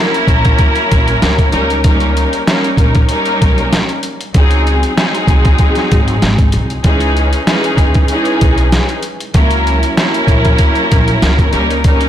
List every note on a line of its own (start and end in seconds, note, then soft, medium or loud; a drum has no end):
0.00 1.53 F#3 loud
0.00 1.50 A#3 loud
0.00 1.51 C#4 medium
0.00 1.54 E4 loud
0.00 1.52 A#4 loud
0.14 closed hi-hat medium
0.28 0.51 A#1 medium
0.28 kick medium
0.28 closed hi-hat medium
0.45 kick medium
0.45 closed hi-hat medium
0.59 kick loud
0.59 closed hi-hat medium
0.75 closed hi-hat soft
0.92 1.15 A#1 medium
0.92 kick medium
0.92 closed hi-hat medium
1.08 closed hi-hat medium
1.22 1.46 C#2 medium
1.22 snare loud
1.22 closed hi-hat medium
1.39 kick medium
1.39 closed hi-hat soft
1.51 2.24 C#2 loud
1.51 1.81 G3 loud
1.51 1.81 A#3 medium
1.51 1.82 C#4 medium
1.51 1.82 D#4 medium
1.51 1.82 A#4 loud
1.51 closed hi-hat medium
1.70 closed hi-hat soft
1.84 2.43 G3 medium
1.84 2.43 A#3 medium
1.84 2.43 C#4 medium
1.84 2.43 D#4 medium
1.84 2.44 A#4 loud
1.84 kick loud
1.84 closed hi-hat medium
2.00 closed hi-hat medium
2.17 closed hi-hat medium
2.33 closed hi-hat medium
2.46 3.05 G3 medium
2.46 3.05 A#3 medium
2.46 3.05 C#4 medium
2.46 3.05 D#4 medium
2.46 3.05 A#4 loud
2.46 snare loud
2.46 closed hi-hat medium
2.64 closed hi-hat medium
2.77 3.01 A#1 medium
2.77 kick medium
2.77 closed hi-hat medium
2.95 kick medium
2.95 closed hi-hat medium
3.09 3.96 G3 loud
3.09 3.96 A#3 medium
3.09 3.97 C#4 medium
3.09 3.97 D#4 medium
3.09 3.97 A#4 loud
3.09 closed hi-hat medium
3.26 closed hi-hat soft
3.42 3.78 B1 medium
3.42 kick medium
3.42 closed hi-hat medium
3.58 closed hi-hat medium
3.73 snare loud
3.73 closed hi-hat medium
3.89 closed hi-hat soft
4.03 closed hi-hat medium
4.21 closed hi-hat soft
4.34 4.82 C#2 loud
4.34 4.93 F#3 loud
4.34 4.93 G#3 medium
4.34 4.93 C4 medium
4.34 4.93 D#4 medium
4.34 4.93 G#4 loud
4.34 kick loud
4.34 closed hi-hat medium
4.51 closed hi-hat medium
4.67 closed hi-hat medium
4.83 closed hi-hat medium
4.96 6.70 F#3 loud
4.96 6.71 G#3 medium
4.96 6.71 C4 medium
4.96 6.71 D#4 medium
4.96 6.71 G#4 loud
4.96 snare loud
4.96 closed hi-hat medium
5.14 closed hi-hat medium
5.28 5.51 C2 medium
5.28 kick medium
5.28 closed hi-hat medium
5.45 kick medium
5.45 closed hi-hat medium
5.58 kick medium
5.58 closed hi-hat medium
5.75 snare soft
5.75 closed hi-hat soft
5.92 6.15 G#1 loud
5.92 kick medium
5.92 closed hi-hat medium
6.08 closed hi-hat medium
6.22 6.55 G#1 loud
6.22 snare loud
6.22 closed hi-hat medium
6.39 kick medium
6.39 closed hi-hat medium
6.52 6.77 C2 medium
6.52 closed hi-hat medium
6.70 closed hi-hat soft
6.84 7.32 C#2 loud
6.84 7.42 E3 medium
6.84 7.42 G#3 medium
6.84 7.43 C#4 medium
6.84 7.43 D#4 medium
6.84 7.43 G#4 loud
6.84 kick loud
6.84 closed hi-hat medium
7.00 closed hi-hat medium
7.17 closed hi-hat medium
7.33 closed hi-hat medium
7.47 8.05 E3 medium
7.47 8.05 G#3 medium
7.47 8.05 C#4 medium
7.47 8.06 D#4 medium
7.47 8.06 G#4 loud
7.47 snare loud
7.47 closed hi-hat medium
7.64 closed hi-hat medium
7.77 8.01 D#2 medium
7.77 kick medium
7.77 closed hi-hat medium
7.94 kick medium
7.94 closed hi-hat medium
8.08 8.96 E3 loud
8.08 8.97 G#3 medium
8.08 8.97 C#4 medium
8.08 8.97 D#4 medium
8.08 8.97 G#4 loud
8.08 closed hi-hat medium
8.25 closed hi-hat soft
8.41 8.78 B1 medium
8.41 kick medium
8.41 closed hi-hat medium
8.58 closed hi-hat medium
8.72 snare loud
8.72 closed hi-hat medium
8.89 closed hi-hat medium
9.03 closed hi-hat medium
9.20 closed hi-hat soft
9.34 9.82 C#2 loud
9.34 9.92 F#3 loud
9.34 9.93 A#3 medium
9.34 9.93 C#4 medium
9.34 9.93 E4 medium
9.34 9.93 A#4 loud
9.34 kick loud
9.34 closed hi-hat medium
9.51 closed hi-hat medium
9.67 closed hi-hat medium
9.83 closed hi-hat medium
9.97 11.53 F#3 loud
9.97 11.51 A#3 loud
9.97 11.51 C#4 medium
9.97 11.54 E4 loud
9.97 11.52 A#4 loud
9.97 snare loud
9.97 closed hi-hat medium
10.14 closed hi-hat medium
10.27 10.51 A#1 medium
10.27 kick medium
10.27 closed hi-hat medium
10.45 kick medium
10.45 closed hi-hat medium
10.58 kick loud
10.58 closed hi-hat medium
10.75 closed hi-hat soft
10.92 11.15 A#1 medium
10.92 kick medium
10.92 closed hi-hat medium
11.08 closed hi-hat medium
11.22 11.46 C#2 loud
11.22 snare loud
11.22 closed hi-hat medium
11.39 kick medium
11.39 closed hi-hat soft
11.51 12.09 C#2 medium
11.51 11.81 G3 loud
11.51 11.82 A#3 medium
11.51 11.82 C#4 medium
11.51 11.82 D#4 medium
11.51 11.82 A#4 loud
11.51 closed hi-hat medium
11.70 closed hi-hat soft
11.84 12.09 G3 medium
11.84 12.09 A#3 medium
11.84 12.09 C#4 medium
11.84 12.09 D#4 medium
11.84 12.09 A#4 loud
11.84 kick loud
11.84 closed hi-hat medium
12.01 closed hi-hat medium